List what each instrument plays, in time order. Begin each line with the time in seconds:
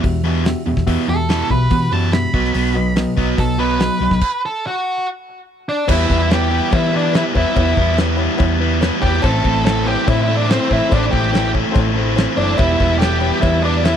0.03 overdriven electric guitar E2 B2, fingered electric bass E2, reed electric piano F#4 G4 E5, kick, open hi-hat
0.24 overdriven electric guitar E2 B2 E3, reed electric piano F#4 G4 E5
0.45 overdriven electric guitar E2 B2, reed electric piano F#4 G4 E5, snare, open hi-hat
0.66 overdriven electric guitar E2 B2, fingered electric bass E2, reed electric piano F#4 G4 E5
0.77 fingered electric bass E2, kick, snare
0.87 overdriven electric guitar E2 B2 E3, fingered electric bass E2, reed electric piano F#4 G4 E5, kick, open hi-hat
1.08 fingered electric bass E2, overdriven electric guitar E2 B2, reed electric piano F#4 G4 E5, lead electric guitar A4
1.29 overdriven electric guitar E2 B2 E3, reed electric piano F#4 G4 E5, snare, open hi-hat
1.50 fingered electric bass B1, overdriven electric guitar E2 B2, reed electric piano F#4 G4 E5, lead electric guitar B4, kick
1.70 overdriven electric guitar E2 B2, fingered electric bass E3, reed electric piano F#4 G4 F#5, kick, open hi-hat
1.91 overdriven electric guitar E2 B2 E3, fingered electric bass F#2, reed electric piano F#4 G4 E5, lead electric guitar A5
2.12 overdriven electric guitar E2 B2, reed electric piano F#4 G4 E5, lead electric guitar B5, snare, open hi-hat
2.34 fingered electric bass B1, overdriven electric guitar B2 F#3 B3, reed electric piano F#4 B4 D#5, kick
2.45 snare
2.54 fingered electric bass B1, overdriven electric guitar B2 F#3 B3, open hi-hat
2.74 overdriven electric guitar B2 F#3, reed electric piano F#4 B4 D#5
2.96 overdriven electric guitar B2 F#3, reed electric piano F#4 B4 D#5, snare, open hi-hat
3.16 fingered electric bass B1, overdriven electric guitar B2 F#3 B3, reed electric piano F#4 B4 D#5, kick
3.37 fingered electric bass B1, overdriven electric guitar B2 F#3, reed electric piano F#4 B4 D#5, lead electric guitar A4, kick, open hi-hat
3.58 overdriven electric guitar B2 F#3 B3, reed electric piano F#4 B4 D#5, lead electric guitar B4
3.79 overdriven electric guitar B2 F#3, reed electric piano F#4 B4 D#5, snare, open hi-hat
4.00 fingered electric bass B1, overdriven electric guitar B2 F#3, reed electric piano F#4 B4 D#5
4.11 fingered electric bass B1, kick, snare
4.21 kick, crash
4.46 lead electric guitar A4
4.67 lead electric guitar F#4
5.69 lead electric guitar D4
5.87 fingered electric bass E2, overdriven electric guitar E3 G3 B3 E4, reed electric piano B3 E4 G4 B4, lead electric guitar E4, kick, crash, cowbell
6.09 fingered electric bass E2, distorted electric guitar E3, overdriven electric guitar G3 B3 E4, reed electric piano B3 E4 G4 B4, kick
6.29 overdriven electric guitar E3 G3 B3 E4, reed electric piano B3 E4 G4 B4, lead electric guitar G4, snare, cowbell, crash
6.50 distorted electric guitar G3 B3 E4, reed electric piano B3 E4 G4 B4
6.71 fingered electric bass E3, reed electric piano B3 E4 G4 B4, lead electric guitar E4, kick, cowbell, crash
6.91 reed electric piano B3 E4 G4 B4, overdriven electric guitar B3 E4
6.96 overdriven electric guitar G3, lead electric guitar D4
7.11 overdriven electric guitar E3, reed electric piano B3 E4 G4 B4, cowbell, crash
7.15 overdriven electric guitar G3 B3 E4, lead electric guitar E4, snare
7.33 fingered electric bass E2, reed electric piano B3 E4 G4 B4, overdriven electric guitar B3 E4, kick, cowbell
7.37 overdriven electric guitar G3, lead electric guitar E4
7.55 fingered electric bass E2, overdriven electric guitar E3 G3 B3 E4, reed electric piano B3 E4 G4 B4, kick, cowbell, crash
7.77 fingered electric bass E2, distorted electric guitar E3, overdriven electric guitar G3 B3 E4, reed electric piano B3 E4 G4 B4, kick
7.97 overdriven electric guitar E3 G3 B3 E4, reed electric piano B3 E4 G4 B4, snare, cowbell, crash
8.16 distorted electric guitar G3 B3 E4, reed electric piano B3 E4 G4 B4, cowbell
8.37 fingered electric bass E2, reed electric piano B3 E4 G4 B4, kick, cowbell, crash
8.59 reed electric piano B3 E4 G4 B4, overdriven electric guitar B3 E4
8.63 overdriven electric guitar G3
8.81 overdriven electric guitar E3 G3 B3 E4, reed electric piano B3 E4 G4 B4, snare, cowbell, crash
9.02 fingered electric bass E2, overdriven electric guitar G3 B3 E4, reed electric piano B3 E4 G4 B4, lead electric guitar G4, kick, cowbell
9.22 fingered electric bass A1, overdriven electric guitar A2 E3 A3 C4, reed electric piano C4 E4 A4 C5, lead electric guitar A4, kick, cowbell, crash
9.26 overdriven electric guitar E4
9.43 fingered electric bass A1, distorted electric guitar A2 E3, reed electric piano C4 E4 A4 C5, overdriven electric guitar C4 E4, kick
9.48 overdriven electric guitar A3
9.64 overdriven electric guitar A2 E3 A3 C4 E4, reed electric piano C4 E4 A4 C5, lead electric guitar A4, snare, cowbell, crash
9.84 reed electric piano C4 E4 A4 B4, distorted electric guitar C4 E4, lead electric guitar G4, cowbell
9.89 distorted electric guitar A3
10.05 fingered electric bass A2, reed electric piano C4 E4 A4 C5, lead electric guitar E4, kick, cowbell, crash
10.22 lead electric guitar E4
10.26 reed electric piano C4 E4 A4 D5, overdriven electric guitar C4 E4
10.31 overdriven electric guitar A3
10.37 lead electric guitar D4
10.49 overdriven electric guitar E3 A3 C4 E4, reed electric piano C4 E4 A4 C5, lead electric guitar C4, snare, cowbell, crash
10.68 fingered electric bass A1, reed electric piano C4 E4 A4 C5, overdriven electric guitar E4, kick, cowbell
10.73 overdriven electric guitar A3 C4, lead electric guitar E4
10.89 fingered electric bass A1, overdriven electric guitar A2 E3, reed electric piano C4 E4 A4 C5, lead electric guitar D4, kick, cowbell, crash
10.94 overdriven electric guitar A3 C4 E4
11.09 fingered electric bass A1, reed electric piano C4 E4 A4 C5, overdriven electric guitar E4, lead electric guitar G4, kick
11.15 distorted electric guitar A2 E3, overdriven electric guitar A3 C4
11.31 overdriven electric guitar A2 E3 A3, reed electric piano C4 E4 A4 B4, snare, cowbell, crash
11.36 overdriven electric guitar C4 E4
11.53 distorted electric guitar A3 C4 E4, reed electric piano C4 E4 A4 C5, kick, cowbell
11.72 reed electric piano C4 E4 A4 C5, kick, cowbell
11.76 fingered electric bass A1, crash
11.95 overdriven electric guitar A3 C4 E4, reed electric piano C4 E4 A4 C5
12.16 overdriven electric guitar E3 A3 C4 E4, reed electric piano C4 E4 A4 C5, snare, cowbell, crash
12.36 fingered electric bass F#1, reed electric piano C4 E4 A4 C5, overdriven electric guitar C4 E4, lead electric guitar D4, cowbell
12.42 overdriven electric guitar A3
12.58 fingered electric bass E1, overdriven electric guitar E3 G3 B3, reed electric piano B3 E4 G4 B4, lead electric guitar E4, kick, cowbell, crash
12.62 overdriven electric guitar E4
12.79 fingered electric bass E1, distorted electric guitar E3, reed electric piano B3 E4 G4 B4, overdriven electric guitar B3 E4, kick
12.83 overdriven electric guitar G3
12.99 overdriven electric guitar E3 G3 B3, reed electric piano B3 E4 G4 A4, lead electric guitar G4, snare, cowbell, crash
13.03 overdriven electric guitar E4
13.21 distorted electric guitar G3 B3 E4, reed electric piano B3 E4 G4 B4, cowbell
13.41 fingered electric bass E2, reed electric piano B3 E4 G4 B4, lead electric guitar E4, kick, cowbell, crash
13.62 reed electric piano B3 E4 G4 B4, overdriven electric guitar B3 E4, lead electric guitar D4
13.67 overdriven electric guitar G3
13.84 overdriven electric guitar E3 G3 B3 E4, reed electric piano B3 E4 G4 B4, lead electric guitar E4, snare, cowbell, crash